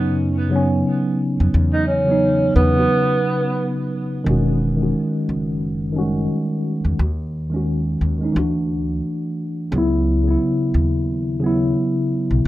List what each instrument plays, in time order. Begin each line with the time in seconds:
Already playing: upright bass F#2, tine electric piano C#3 F#3 B3 C#4 D#4
0.49 tine electric piano C#3 F#3 B3
0.55 tine electric piano C#4
1.40 upright bass F2
1.54 upright bass E2
1.73 tenor saxophone D#4
1.87 tenor saxophone C#4
2.05 tine electric piano C#3 F#3
2.09 tine electric piano B3 D#4
2.56 upright bass E2, tenor saxophone B3
2.73 tine electric piano C#3 F#3
2.77 tine electric piano B3 F#4
4.24 upright bass E1, tine electric piano D#3 G#3
4.28 tine electric piano C#4 F#4
4.76 tine electric piano D#3 G#3
4.81 tine electric piano C#4 F#4
5.29 upright bass F#1
5.92 tine electric piano D#3 G3 C#4
5.99 tine electric piano G#3 F#4
6.85 upright bass E2
6.99 upright bass D#2
7.50 tine electric piano D#3 G#3
7.54 tine electric piano C#4 F#4
8.01 upright bass D#2
8.19 tine electric piano D#3 G#3
8.23 tine electric piano C#4 D#4
8.33 upright bass D2, tine electric piano E3 A3
8.37 tine electric piano D4 F#4
9.72 upright bass C#2, tine electric piano C#3 F#3
9.76 tine electric piano B3 E4
10.24 tine electric piano C#3 F#3
10.28 tine electric piano B3 E4
10.74 upright bass D#2
11.40 tine electric piano C#3 F#3 B3
11.46 tine electric piano E4
12.31 upright bass B1